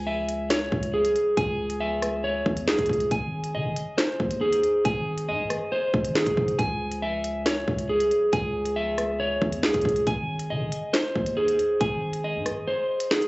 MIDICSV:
0, 0, Header, 1, 4, 480
1, 0, Start_track
1, 0, Key_signature, 4, "minor"
1, 0, Tempo, 434783
1, 1515, Time_signature, 4, 2, 24, 8
1, 14659, End_track
2, 0, Start_track
2, 0, Title_t, "Clean electric guitar"
2, 0, Program_c, 0, 27
2, 0, Note_on_c, 0, 80, 117
2, 73, Note_on_c, 0, 76, 99
2, 556, Note_on_c, 0, 73, 92
2, 1034, Note_on_c, 0, 68, 87
2, 1502, Note_off_c, 0, 80, 0
2, 1515, Note_on_c, 0, 80, 108
2, 1979, Note_off_c, 0, 76, 0
2, 1992, Note_on_c, 0, 76, 109
2, 2460, Note_off_c, 0, 73, 0
2, 2473, Note_on_c, 0, 73, 93
2, 2941, Note_off_c, 0, 68, 0
2, 2954, Note_on_c, 0, 68, 91
2, 3424, Note_off_c, 0, 80, 0
2, 3434, Note_off_c, 0, 68, 0
2, 3434, Note_off_c, 0, 73, 0
2, 3434, Note_off_c, 0, 76, 0
2, 3437, Note_on_c, 0, 80, 108
2, 3915, Note_on_c, 0, 75, 94
2, 4390, Note_on_c, 0, 72, 93
2, 4870, Note_on_c, 0, 68, 91
2, 5342, Note_off_c, 0, 80, 0
2, 5355, Note_on_c, 0, 80, 110
2, 5823, Note_off_c, 0, 75, 0
2, 5836, Note_on_c, 0, 75, 98
2, 6301, Note_off_c, 0, 72, 0
2, 6314, Note_on_c, 0, 72, 98
2, 6781, Note_off_c, 0, 68, 0
2, 6794, Note_on_c, 0, 68, 91
2, 7258, Note_off_c, 0, 80, 0
2, 7271, Note_on_c, 0, 80, 115
2, 7274, Note_off_c, 0, 68, 0
2, 7275, Note_off_c, 0, 72, 0
2, 7276, Note_off_c, 0, 75, 0
2, 7754, Note_on_c, 0, 76, 102
2, 8237, Note_on_c, 0, 73, 89
2, 8715, Note_on_c, 0, 68, 87
2, 9182, Note_off_c, 0, 80, 0
2, 9195, Note_on_c, 0, 80, 111
2, 9659, Note_off_c, 0, 76, 0
2, 9672, Note_on_c, 0, 76, 108
2, 10140, Note_off_c, 0, 73, 0
2, 10153, Note_on_c, 0, 73, 91
2, 10621, Note_off_c, 0, 68, 0
2, 10634, Note_on_c, 0, 68, 92
2, 11104, Note_off_c, 0, 80, 0
2, 11114, Note_off_c, 0, 73, 0
2, 11114, Note_off_c, 0, 76, 0
2, 11115, Note_off_c, 0, 68, 0
2, 11118, Note_on_c, 0, 80, 112
2, 11596, Note_on_c, 0, 75, 92
2, 12069, Note_on_c, 0, 72, 99
2, 12550, Note_on_c, 0, 68, 89
2, 13022, Note_off_c, 0, 80, 0
2, 13035, Note_on_c, 0, 80, 108
2, 13502, Note_off_c, 0, 75, 0
2, 13516, Note_on_c, 0, 75, 91
2, 13980, Note_off_c, 0, 72, 0
2, 13993, Note_on_c, 0, 72, 98
2, 14460, Note_off_c, 0, 68, 0
2, 14473, Note_on_c, 0, 68, 89
2, 14659, Note_off_c, 0, 68, 0
2, 14659, Note_off_c, 0, 72, 0
2, 14659, Note_off_c, 0, 75, 0
2, 14659, Note_off_c, 0, 80, 0
2, 14659, End_track
3, 0, Start_track
3, 0, Title_t, "808-style bass"
3, 0, Program_c, 1, 38
3, 0, Note_on_c, 1, 37, 121
3, 751, Note_off_c, 1, 37, 0
3, 795, Note_on_c, 1, 37, 108
3, 1155, Note_on_c, 1, 36, 99
3, 1171, Note_off_c, 1, 37, 0
3, 1269, Note_off_c, 1, 36, 0
3, 1515, Note_on_c, 1, 37, 121
3, 2671, Note_off_c, 1, 37, 0
3, 2715, Note_on_c, 1, 40, 110
3, 2955, Note_on_c, 1, 36, 100
3, 2971, Note_off_c, 1, 40, 0
3, 3069, Note_off_c, 1, 36, 0
3, 3075, Note_on_c, 1, 37, 101
3, 3190, Note_off_c, 1, 37, 0
3, 3195, Note_on_c, 1, 37, 105
3, 3425, Note_off_c, 1, 37, 0
3, 3435, Note_on_c, 1, 32, 113
3, 3914, Note_on_c, 1, 51, 95
3, 3931, Note_off_c, 1, 32, 0
3, 4035, Note_on_c, 1, 32, 101
3, 4051, Note_off_c, 1, 51, 0
3, 4149, Note_off_c, 1, 32, 0
3, 4635, Note_on_c, 1, 39, 107
3, 5096, Note_off_c, 1, 39, 0
3, 5355, Note_on_c, 1, 32, 113
3, 5835, Note_on_c, 1, 44, 97
3, 5851, Note_off_c, 1, 32, 0
3, 5955, Note_on_c, 1, 32, 98
3, 5972, Note_off_c, 1, 44, 0
3, 6069, Note_off_c, 1, 32, 0
3, 6555, Note_on_c, 1, 32, 110
3, 6901, Note_off_c, 1, 32, 0
3, 6915, Note_on_c, 1, 32, 104
3, 7030, Note_off_c, 1, 32, 0
3, 7035, Note_on_c, 1, 44, 104
3, 7265, Note_off_c, 1, 44, 0
3, 7275, Note_on_c, 1, 37, 114
3, 8431, Note_off_c, 1, 37, 0
3, 8475, Note_on_c, 1, 37, 107
3, 8835, Note_on_c, 1, 36, 99
3, 8852, Note_off_c, 1, 37, 0
3, 8949, Note_off_c, 1, 36, 0
3, 9195, Note_on_c, 1, 37, 115
3, 10351, Note_off_c, 1, 37, 0
3, 10395, Note_on_c, 1, 40, 107
3, 10636, Note_on_c, 1, 36, 104
3, 10652, Note_off_c, 1, 40, 0
3, 10749, Note_off_c, 1, 36, 0
3, 10755, Note_on_c, 1, 37, 102
3, 10870, Note_off_c, 1, 37, 0
3, 10875, Note_on_c, 1, 37, 104
3, 11105, Note_off_c, 1, 37, 0
3, 11115, Note_on_c, 1, 32, 114
3, 11596, Note_on_c, 1, 51, 99
3, 11612, Note_off_c, 1, 32, 0
3, 11715, Note_on_c, 1, 32, 98
3, 11732, Note_off_c, 1, 51, 0
3, 11829, Note_off_c, 1, 32, 0
3, 12315, Note_on_c, 1, 39, 105
3, 12776, Note_off_c, 1, 39, 0
3, 13035, Note_on_c, 1, 32, 113
3, 13635, Note_on_c, 1, 44, 101
3, 13651, Note_off_c, 1, 32, 0
3, 13755, Note_on_c, 1, 32, 98
3, 13771, Note_off_c, 1, 44, 0
3, 13869, Note_off_c, 1, 32, 0
3, 14659, End_track
4, 0, Start_track
4, 0, Title_t, "Drums"
4, 316, Note_on_c, 9, 42, 84
4, 426, Note_off_c, 9, 42, 0
4, 554, Note_on_c, 9, 38, 110
4, 558, Note_on_c, 9, 42, 80
4, 566, Note_on_c, 9, 39, 88
4, 665, Note_off_c, 9, 38, 0
4, 668, Note_off_c, 9, 42, 0
4, 677, Note_off_c, 9, 39, 0
4, 795, Note_on_c, 9, 36, 104
4, 905, Note_off_c, 9, 36, 0
4, 914, Note_on_c, 9, 42, 81
4, 1025, Note_off_c, 9, 42, 0
4, 1156, Note_on_c, 9, 42, 81
4, 1266, Note_off_c, 9, 42, 0
4, 1277, Note_on_c, 9, 42, 73
4, 1388, Note_off_c, 9, 42, 0
4, 1515, Note_on_c, 9, 36, 121
4, 1515, Note_on_c, 9, 42, 84
4, 1625, Note_off_c, 9, 36, 0
4, 1625, Note_off_c, 9, 42, 0
4, 1875, Note_on_c, 9, 42, 77
4, 1986, Note_off_c, 9, 42, 0
4, 2234, Note_on_c, 9, 37, 96
4, 2235, Note_on_c, 9, 42, 83
4, 2344, Note_off_c, 9, 37, 0
4, 2346, Note_off_c, 9, 42, 0
4, 2715, Note_on_c, 9, 36, 102
4, 2825, Note_off_c, 9, 36, 0
4, 2835, Note_on_c, 9, 42, 83
4, 2945, Note_off_c, 9, 42, 0
4, 2955, Note_on_c, 9, 38, 126
4, 2966, Note_on_c, 9, 39, 99
4, 3065, Note_off_c, 9, 38, 0
4, 3075, Note_on_c, 9, 36, 103
4, 3075, Note_on_c, 9, 42, 70
4, 3077, Note_off_c, 9, 39, 0
4, 3155, Note_off_c, 9, 42, 0
4, 3155, Note_on_c, 9, 42, 69
4, 3185, Note_off_c, 9, 36, 0
4, 3195, Note_on_c, 9, 36, 103
4, 3235, Note_off_c, 9, 42, 0
4, 3235, Note_on_c, 9, 42, 67
4, 3305, Note_off_c, 9, 36, 0
4, 3316, Note_off_c, 9, 42, 0
4, 3316, Note_on_c, 9, 42, 73
4, 3426, Note_off_c, 9, 42, 0
4, 3435, Note_on_c, 9, 36, 116
4, 3435, Note_on_c, 9, 42, 86
4, 3545, Note_off_c, 9, 36, 0
4, 3545, Note_off_c, 9, 42, 0
4, 3795, Note_on_c, 9, 42, 77
4, 3905, Note_off_c, 9, 42, 0
4, 4156, Note_on_c, 9, 42, 81
4, 4266, Note_off_c, 9, 42, 0
4, 4394, Note_on_c, 9, 38, 114
4, 4398, Note_on_c, 9, 42, 77
4, 4406, Note_on_c, 9, 39, 90
4, 4505, Note_off_c, 9, 38, 0
4, 4509, Note_off_c, 9, 42, 0
4, 4517, Note_off_c, 9, 39, 0
4, 4635, Note_on_c, 9, 36, 105
4, 4745, Note_off_c, 9, 36, 0
4, 4755, Note_on_c, 9, 42, 82
4, 4865, Note_off_c, 9, 42, 0
4, 4996, Note_on_c, 9, 42, 81
4, 5106, Note_off_c, 9, 42, 0
4, 5117, Note_on_c, 9, 42, 74
4, 5227, Note_off_c, 9, 42, 0
4, 5355, Note_on_c, 9, 36, 121
4, 5355, Note_on_c, 9, 42, 82
4, 5465, Note_off_c, 9, 42, 0
4, 5466, Note_off_c, 9, 36, 0
4, 5715, Note_on_c, 9, 42, 76
4, 5825, Note_off_c, 9, 42, 0
4, 6074, Note_on_c, 9, 37, 92
4, 6076, Note_on_c, 9, 42, 82
4, 6184, Note_off_c, 9, 37, 0
4, 6186, Note_off_c, 9, 42, 0
4, 6555, Note_on_c, 9, 36, 104
4, 6665, Note_off_c, 9, 36, 0
4, 6674, Note_on_c, 9, 42, 81
4, 6785, Note_off_c, 9, 42, 0
4, 6794, Note_on_c, 9, 38, 123
4, 6806, Note_on_c, 9, 39, 103
4, 6905, Note_off_c, 9, 38, 0
4, 6915, Note_on_c, 9, 36, 102
4, 6916, Note_on_c, 9, 42, 83
4, 6917, Note_off_c, 9, 39, 0
4, 7026, Note_off_c, 9, 36, 0
4, 7026, Note_off_c, 9, 42, 0
4, 7035, Note_on_c, 9, 36, 99
4, 7145, Note_off_c, 9, 36, 0
4, 7155, Note_on_c, 9, 42, 75
4, 7266, Note_off_c, 9, 42, 0
4, 7274, Note_on_c, 9, 42, 79
4, 7275, Note_on_c, 9, 36, 121
4, 7385, Note_off_c, 9, 36, 0
4, 7385, Note_off_c, 9, 42, 0
4, 7634, Note_on_c, 9, 42, 76
4, 7745, Note_off_c, 9, 42, 0
4, 7995, Note_on_c, 9, 42, 82
4, 8106, Note_off_c, 9, 42, 0
4, 8234, Note_on_c, 9, 38, 112
4, 8238, Note_on_c, 9, 42, 79
4, 8246, Note_on_c, 9, 39, 86
4, 8344, Note_off_c, 9, 38, 0
4, 8348, Note_off_c, 9, 42, 0
4, 8356, Note_off_c, 9, 39, 0
4, 8475, Note_on_c, 9, 36, 106
4, 8585, Note_off_c, 9, 36, 0
4, 8595, Note_on_c, 9, 42, 81
4, 8705, Note_off_c, 9, 42, 0
4, 8836, Note_on_c, 9, 42, 84
4, 8946, Note_off_c, 9, 42, 0
4, 8957, Note_on_c, 9, 42, 74
4, 9067, Note_off_c, 9, 42, 0
4, 9194, Note_on_c, 9, 42, 83
4, 9195, Note_on_c, 9, 36, 120
4, 9305, Note_off_c, 9, 36, 0
4, 9305, Note_off_c, 9, 42, 0
4, 9555, Note_on_c, 9, 42, 78
4, 9665, Note_off_c, 9, 42, 0
4, 9914, Note_on_c, 9, 37, 98
4, 9916, Note_on_c, 9, 42, 82
4, 10024, Note_off_c, 9, 37, 0
4, 10026, Note_off_c, 9, 42, 0
4, 10395, Note_on_c, 9, 36, 103
4, 10506, Note_off_c, 9, 36, 0
4, 10515, Note_on_c, 9, 42, 82
4, 10625, Note_off_c, 9, 42, 0
4, 10634, Note_on_c, 9, 38, 127
4, 10646, Note_on_c, 9, 39, 97
4, 10745, Note_off_c, 9, 38, 0
4, 10755, Note_on_c, 9, 36, 105
4, 10755, Note_on_c, 9, 42, 70
4, 10757, Note_off_c, 9, 39, 0
4, 10835, Note_off_c, 9, 42, 0
4, 10835, Note_on_c, 9, 42, 70
4, 10866, Note_off_c, 9, 36, 0
4, 10875, Note_on_c, 9, 36, 102
4, 10915, Note_off_c, 9, 42, 0
4, 10915, Note_on_c, 9, 42, 68
4, 10986, Note_off_c, 9, 36, 0
4, 10996, Note_off_c, 9, 42, 0
4, 10996, Note_on_c, 9, 42, 75
4, 11106, Note_off_c, 9, 42, 0
4, 11115, Note_on_c, 9, 36, 120
4, 11115, Note_on_c, 9, 42, 85
4, 11225, Note_off_c, 9, 42, 0
4, 11226, Note_off_c, 9, 36, 0
4, 11475, Note_on_c, 9, 42, 76
4, 11585, Note_off_c, 9, 42, 0
4, 11836, Note_on_c, 9, 42, 82
4, 11946, Note_off_c, 9, 42, 0
4, 12074, Note_on_c, 9, 38, 109
4, 12078, Note_on_c, 9, 42, 78
4, 12086, Note_on_c, 9, 39, 92
4, 12185, Note_off_c, 9, 38, 0
4, 12188, Note_off_c, 9, 42, 0
4, 12197, Note_off_c, 9, 39, 0
4, 12315, Note_on_c, 9, 36, 103
4, 12426, Note_off_c, 9, 36, 0
4, 12435, Note_on_c, 9, 42, 81
4, 12545, Note_off_c, 9, 42, 0
4, 12676, Note_on_c, 9, 42, 81
4, 12786, Note_off_c, 9, 42, 0
4, 12797, Note_on_c, 9, 42, 72
4, 12907, Note_off_c, 9, 42, 0
4, 13034, Note_on_c, 9, 42, 81
4, 13035, Note_on_c, 9, 36, 123
4, 13145, Note_off_c, 9, 36, 0
4, 13145, Note_off_c, 9, 42, 0
4, 13395, Note_on_c, 9, 42, 77
4, 13505, Note_off_c, 9, 42, 0
4, 13754, Note_on_c, 9, 37, 91
4, 13755, Note_on_c, 9, 42, 86
4, 13864, Note_off_c, 9, 37, 0
4, 13866, Note_off_c, 9, 42, 0
4, 14354, Note_on_c, 9, 42, 82
4, 14465, Note_off_c, 9, 42, 0
4, 14474, Note_on_c, 9, 38, 126
4, 14486, Note_on_c, 9, 39, 98
4, 14584, Note_off_c, 9, 38, 0
4, 14596, Note_off_c, 9, 39, 0
4, 14596, Note_on_c, 9, 42, 79
4, 14659, Note_off_c, 9, 42, 0
4, 14659, End_track
0, 0, End_of_file